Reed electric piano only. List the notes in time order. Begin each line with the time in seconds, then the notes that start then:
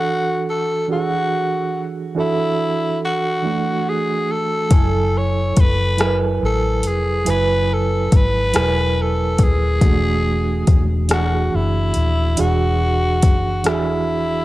Already playing: E3 D4 F#4 A4
0.88 E3 D4 F#4 G#4
2.15 E3 D4 F#4 A4
3.42 E3 A3 D4 F#4
4.70 F#3 E4 A4 G#5
5.97 F#3 E4 A#4 G#5
6.07 B4
7.25 F#3 E4 B4 G#5
8.53 F#3 E4 A#4 G#5
8.62 B4
9.81 E3 A3 D4 F#4
11.08 E3 D4 F#4 G#4
12.36 E3 D4 F#4 G#4
13.64 E3 D4 F#4 G#4